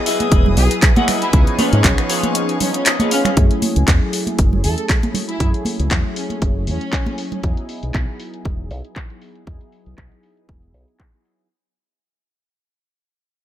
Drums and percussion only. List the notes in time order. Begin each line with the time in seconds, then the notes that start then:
0.06 open hi-hat
0.20 closed hi-hat, high conga
0.32 kick, closed hi-hat
0.46 low conga
0.57 open hi-hat
0.71 closed hi-hat
0.82 kick, clap, closed hi-hat
0.96 closed hi-hat, high conga
1.08 finger snap, open hi-hat, low conga
1.22 closed hi-hat
1.33 kick, closed hi-hat
1.47 closed hi-hat
1.59 open hi-hat, high conga
1.73 closed hi-hat
1.84 kick, clap, closed hi-hat
1.98 finger snap, closed hi-hat
2.10 open hi-hat
2.23 closed hi-hat, high conga
2.35 closed hi-hat
2.49 closed hi-hat
2.60 open hi-hat, low conga
2.74 closed hi-hat
2.86 clap, closed hi-hat
3.00 closed hi-hat, high conga
3.11 open hi-hat
3.25 finger snap, closed hi-hat, low conga
3.37 kick, closed hi-hat
3.51 closed hi-hat
3.62 open hi-hat, high conga
3.76 closed hi-hat
3.88 kick, clap, closed hi-hat
4.13 open hi-hat
4.27 closed hi-hat, high conga
4.39 kick, closed hi-hat
4.53 low conga
4.64 open hi-hat
4.78 closed hi-hat
4.89 kick, clap, closed hi-hat
5.03 closed hi-hat, high conga
5.14 open hi-hat, low conga
5.29 closed hi-hat
5.40 kick, closed hi-hat
5.54 closed hi-hat
5.65 open hi-hat, high conga
5.80 closed hi-hat
5.91 kick, clap, closed hi-hat
6.16 open hi-hat
6.30 closed hi-hat, high conga
6.42 kick, closed hi-hat
6.67 open hi-hat
6.81 closed hi-hat
6.93 kick, clap, closed hi-hat
7.06 closed hi-hat, high conga
7.18 open hi-hat
7.32 closed hi-hat, low conga
7.43 kick, closed hi-hat
7.57 closed hi-hat
7.69 open hi-hat
7.83 closed hi-hat
7.94 kick, clap, closed hi-hat
8.20 open hi-hat
8.34 closed hi-hat
8.45 kick, closed hi-hat
8.71 open hi-hat
8.85 closed hi-hat
8.96 kick, clap, closed hi-hat
9.10 closed hi-hat
9.22 open hi-hat
9.35 closed hi-hat
9.47 kick, closed hi-hat
9.61 closed hi-hat
9.72 open hi-hat
9.86 closed hi-hat
9.98 kick, clap, closed hi-hat
10.12 closed hi-hat
10.23 open hi-hat
10.37 closed hi-hat
10.49 kick, closed hi-hat
10.63 closed hi-hat
10.74 open hi-hat
10.88 closed hi-hat
11.00 kick, clap, closed hi-hat
11.25 open hi-hat